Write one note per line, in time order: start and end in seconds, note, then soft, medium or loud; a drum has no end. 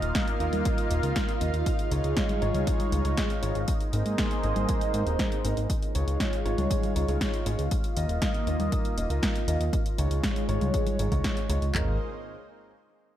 0.00 0.12 D#1 medium
0.00 0.37 A#3 medium
0.00 1.64 A#3 medium
0.00 0.37 D#4 medium
0.00 11.71 D#4 medium
0.00 0.37 F4 medium
0.00 3.64 F4 medium
0.00 0.37 D#5 medium
0.00 1.63 D#5 medium
0.00 3.64 F5 medium
0.00 closed hi-hat soft
0.15 kick loud
0.15 snare loud
0.15 closed hi-hat medium
0.28 closed hi-hat soft
0.40 0.50 D#2 medium
0.40 0.88 A#3 medium
0.40 0.88 D#4 medium
0.40 0.88 F4 medium
0.40 0.88 D#5 loud
0.40 closed hi-hat soft
0.53 0.63 D#2 medium
0.53 closed hi-hat soft
0.53 high conga medium
0.65 kick loud
0.65 closed hi-hat medium
0.78 closed hi-hat soft
0.91 1.00 D#1 loud
0.91 1.00 A#3 medium
0.91 1.00 D#4 medium
0.91 1.00 F4 medium
0.91 1.00 D#5 medium
0.91 closed hi-hat medium
1.03 1.13 C#2 medium
1.03 1.38 A#3 medium
1.03 1.38 D#4 medium
1.03 1.38 F4 medium
1.03 1.38 D#5 medium
1.03 closed hi-hat soft
1.16 kick loud
1.16 snare loud
1.16 closed hi-hat medium
1.29 closed hi-hat soft
1.41 1.51 D#2 loud
1.41 1.55 A#3 medium
1.41 1.55 D#4 medium
1.41 1.55 F4 medium
1.41 1.55 D#5 loud
1.41 closed hi-hat medium
1.54 1.64 D#2 medium
1.54 closed hi-hat soft
1.66 3.66 G#3 medium
1.66 3.66 C#5 medium
1.66 kick loud
1.66 closed hi-hat medium
1.79 closed hi-hat soft
1.91 2.01 C#2 loud
1.91 2.39 G#3 medium
1.91 2.39 D#4 medium
1.91 2.39 F4 medium
1.91 2.39 C#5 medium
1.91 closed hi-hat medium
2.04 2.14 C#2 medium
2.04 closed hi-hat soft
2.17 kick loud
2.17 snare loud
2.17 closed hi-hat medium
2.29 closed hi-hat soft
2.29 high conga medium
2.42 2.52 G#1 medium
2.42 2.89 G#3 medium
2.42 2.89 D#4 medium
2.42 2.89 F4 medium
2.42 2.89 C#5 loud
2.42 closed hi-hat soft
2.54 2.64 C#2 medium
2.54 closed hi-hat soft
2.54 high conga medium
2.67 kick loud
2.67 closed hi-hat medium
2.80 closed hi-hat soft
2.80 high conga medium
2.92 3.02 C#2 loud
2.92 3.02 G#3 medium
2.92 3.02 D#4 medium
2.92 3.02 F4 medium
2.92 3.02 C#5 medium
2.92 closed hi-hat medium
3.05 3.15 C#2 medium
3.05 3.40 G#3 medium
3.05 3.40 D#4 medium
3.05 3.40 F4 medium
3.05 3.40 C#5 loud
3.05 closed hi-hat soft
3.17 kick loud
3.17 snare loud
3.17 closed hi-hat medium
3.30 closed hi-hat soft
3.42 3.53 G#1 medium
3.42 3.56 G#3 medium
3.42 3.56 D#4 medium
3.42 3.56 F4 medium
3.42 3.56 C#5 loud
3.42 closed hi-hat medium
3.55 3.65 G#1 medium
3.55 closed hi-hat soft
3.68 5.68 A#3 medium
3.68 5.68 G#4 medium
3.68 5.68 C5 medium
3.68 5.68 D#5 medium
3.68 kick loud
3.68 closed hi-hat medium
3.81 closed hi-hat soft
3.93 4.03 G#1 medium
3.93 4.41 G#3 medium
3.93 4.41 C4 medium
3.93 4.41 D#4 medium
3.93 4.41 A#4 medium
3.93 closed hi-hat medium
4.06 4.16 G#2 medium
4.06 closed hi-hat soft
4.18 kick loud
4.18 snare loud
4.18 closed hi-hat medium
4.31 closed hi-hat soft
4.43 4.53 G#1 medium
4.43 4.91 G#3 medium
4.43 4.91 C4 medium
4.43 4.91 D#4 medium
4.43 4.91 A#4 loud
4.43 closed hi-hat soft
4.56 4.66 G#1 medium
4.56 closed hi-hat soft
4.56 high conga medium
4.69 kick loud
4.69 closed hi-hat medium
4.81 closed hi-hat soft
4.94 5.04 G#2 medium
4.94 5.04 G#3 medium
4.94 5.04 C4 medium
4.94 5.04 D#4 medium
4.94 5.04 A#4 medium
4.94 closed hi-hat medium
5.07 5.16 D#1 medium
5.07 5.41 G#3 medium
5.07 5.41 C4 medium
5.07 5.41 D#4 medium
5.07 5.41 A#4 medium
5.07 closed hi-hat soft
5.19 kick loud
5.19 snare loud
5.19 closed hi-hat medium
5.32 closed hi-hat soft
5.44 5.54 G#1 loud
5.44 5.58 G#3 medium
5.44 5.58 C4 medium
5.44 5.58 D#4 medium
5.44 5.58 A#4 loud
5.44 closed hi-hat medium
5.57 5.67 G#1 medium
5.57 closed hi-hat soft
5.70 7.69 G#3 medium
5.70 11.71 F4 medium
5.70 7.69 C#5 medium
5.70 11.71 F5 loud
5.70 kick loud
5.70 closed hi-hat medium
5.83 closed hi-hat soft
5.95 6.05 C#2 loud
5.95 6.42 G#3 medium
5.95 6.42 D#4 medium
5.95 6.42 F4 medium
5.95 6.42 C#5 medium
5.95 closed hi-hat medium
6.07 6.17 C#2 medium
6.07 closed hi-hat soft
6.20 kick loud
6.20 snare loud
6.20 closed hi-hat medium
6.33 closed hi-hat soft
6.45 6.55 G#1 medium
6.45 6.93 G#3 medium
6.45 6.93 D#4 medium
6.45 6.93 F4 medium
6.45 6.93 C#5 loud
6.45 closed hi-hat soft
6.58 6.68 C#2 medium
6.58 closed hi-hat soft
6.58 high conga medium
6.71 kick loud
6.71 closed hi-hat loud
6.83 closed hi-hat soft
6.83 high conga medium
6.96 7.06 C#2 loud
6.96 7.05 G#3 medium
6.96 7.05 D#4 medium
6.96 7.05 F4 medium
6.96 7.05 C#5 medium
6.96 closed hi-hat medium
7.08 7.18 C#2 medium
7.08 7.43 G#3 medium
7.08 7.43 D#4 medium
7.08 7.43 F4 medium
7.08 7.43 C#5 medium
7.08 closed hi-hat soft
7.21 kick loud
7.21 snare loud
7.21 closed hi-hat medium
7.34 closed hi-hat soft
7.46 7.56 G#1 loud
7.46 7.60 G#3 loud
7.46 7.60 D#4 medium
7.46 7.60 F4 medium
7.46 7.60 C#5 loud
7.46 closed hi-hat medium
7.59 7.69 C#2 medium
7.59 closed hi-hat soft
7.71 9.71 A#3 medium
7.71 9.71 D#5 medium
7.71 kick loud
7.71 closed hi-hat medium
7.84 closed hi-hat soft
7.96 8.06 D#2 loud
7.96 8.44 A#3 medium
7.96 8.44 D#4 medium
7.96 8.44 F4 medium
7.96 8.44 D#5 medium
7.96 closed hi-hat medium
8.09 8.19 D#1 medium
8.09 closed hi-hat soft
8.22 kick loud
8.22 snare loud
8.22 closed hi-hat medium
8.34 closed hi-hat soft
8.47 8.57 D#2 medium
8.47 8.94 A#3 medium
8.47 8.94 D#4 medium
8.47 8.94 F4 medium
8.47 8.94 D#5 loud
8.47 closed hi-hat soft
8.59 8.69 D#2 medium
8.59 closed hi-hat soft
8.59 high conga medium
8.72 kick loud
8.72 closed hi-hat loud
8.85 closed hi-hat soft
8.97 9.07 D#1 medium
8.97 9.07 A#3 medium
8.97 9.07 D#4 medium
8.97 9.07 F4 medium
8.97 9.07 D#5 medium
8.97 closed hi-hat medium
9.10 9.20 C#2 medium
9.10 9.45 A#3 medium
9.10 9.45 D#4 medium
9.10 9.45 F4 medium
9.10 9.45 D#5 loud
9.10 closed hi-hat soft
9.23 kick loud
9.23 snare loud
9.23 closed hi-hat medium
9.36 closed hi-hat soft
9.48 9.58 D#2 loud
9.48 9.61 A#3 medium
9.48 9.61 D#4 medium
9.48 9.61 F4 medium
9.48 9.61 D#5 loud
9.48 closed hi-hat medium
9.60 9.70 D#2 medium
9.60 closed hi-hat soft
9.73 11.73 G#3 medium
9.73 11.73 C#5 medium
9.73 kick loud
9.73 closed hi-hat loud
9.86 closed hi-hat soft
9.98 10.08 C#2 loud
9.98 10.46 G#3 medium
9.98 10.46 D#4 medium
9.98 10.46 F4 medium
9.98 10.46 C#5 medium
9.98 closed hi-hat medium
10.11 10.21 C#2 medium
10.11 closed hi-hat soft
10.23 kick loud
10.23 snare loud
10.23 closed hi-hat loud
10.36 closed hi-hat soft
10.49 10.58 G#1 medium
10.49 10.96 G#3 medium
10.49 10.96 D#4 medium
10.49 10.96 F4 medium
10.49 10.96 C#5 loud
10.49 closed hi-hat soft
10.61 10.71 C#2 medium
10.61 closed hi-hat soft
10.61 high conga medium
10.74 kick loud
10.74 closed hi-hat medium
10.87 closed hi-hat soft
10.87 high conga medium
10.99 11.09 G#1 medium
10.99 11.09 G#3 medium
10.99 11.09 D#4 medium
10.99 11.09 F4 medium
10.99 11.09 C#5 medium
10.99 closed hi-hat medium
11.12 11.22 C#2 medium
11.12 11.46 G#3 medium
11.12 11.47 D#4 medium
11.12 11.46 F4 medium
11.12 11.46 C#5 medium
11.12 kick medium
11.12 closed hi-hat soft
11.24 kick loud
11.24 snare loud
11.24 closed hi-hat loud
11.37 closed hi-hat soft
11.49 11.59 C#2 loud
11.49 11.63 G#3 medium
11.49 11.63 D#4 medium
11.49 11.63 F4 medium
11.49 11.63 C#5 loud
11.49 closed hi-hat medium
11.62 11.72 C#2 medium
11.62 closed hi-hat soft
11.75 11.98 G#1 loud
11.75 11.93 G#3 medium
11.75 11.98 A#3 medium
11.75 11.93 C4 medium
11.75 11.93 D#4 medium
11.75 11.98 D#4 medium
11.75 11.98 G#4 medium
11.75 11.93 A#4 loud
11.75 11.98 C5 medium
11.75 11.98 D#5 medium
11.75 kick loud
11.75 clap medium
11.75 floor tom loud